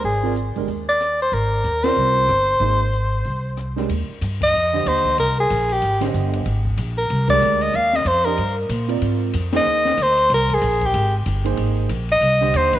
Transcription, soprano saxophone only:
0.05 0.34 G#4 medium
0.89 1.18 D5 medium
1.22 1.35 C5 medium
1.34 1.85 A#4 medium
1.84 3.57 C5 medium
4.43 4.89 D#5 medium
4.88 5.19 C5 medium
5.19 5.37 A#4 medium
5.40 5.74 G#4 medium
5.72 6.03 G4 medium
6.98 7.27 A#4 medium
7.30 7.64 D5 medium
7.62 7.77 D#5 medium
7.76 7.97 F5 loud
7.96 8.09 D#5 medium
8.07 8.27 C5 medium
8.25 8.57 A#4 medium
9.56 10.04 D#5 loud
10.03 10.32 C5 medium
10.34 10.55 A#4 medium
10.54 10.87 G#4 medium
10.86 11.16 G4 medium
12.12 12.58 D#5 loud
12.57 12.77 C5 medium
12.75 12.79 B4 medium

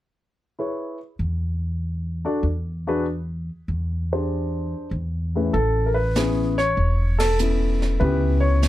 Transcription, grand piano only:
0.59 0.97 E4 soft
0.59 0.97 G#4 soft
0.59 0.98 B4 soft
0.59 0.97 C#5 soft
2.25 2.42 D4 medium
2.25 2.43 F#4 soft
2.25 2.43 A4 soft
2.25 2.43 D5 medium
2.87 3.05 D4 medium
2.87 3.05 F#4 medium
2.87 3.05 G#4 medium
2.87 3.05 B4 medium
4.13 4.89 D4 soft
4.13 4.89 G4 soft
4.13 4.89 G#4 soft
4.13 4.89 C5 soft
5.36 5.52 A2 soft
5.36 5.52 C#4 soft
5.36 5.53 E4 soft
5.36 5.53 G#4 soft
5.36 5.53 B4 soft
5.53 5.88 A4 medium
5.86 5.96 A#4 medium
5.94 6.59 B4 medium
6.16 6.54 B3 medium
6.16 6.55 C#4 soft
6.16 6.54 E4 soft
6.16 6.55 G#4 medium
6.58 7.22 C#5 medium
7.19 7.39 A4 medium
7.40 8.00 B3 soft
7.40 8.00 C#4 soft
7.40 8.00 E4 soft
8.00 8.68 B3 soft
8.00 8.68 C#4 soft
8.00 8.68 E4 soft
8.00 8.68 G4 medium
8.00 8.44 B4 medium
8.40 8.68 C#5 medium

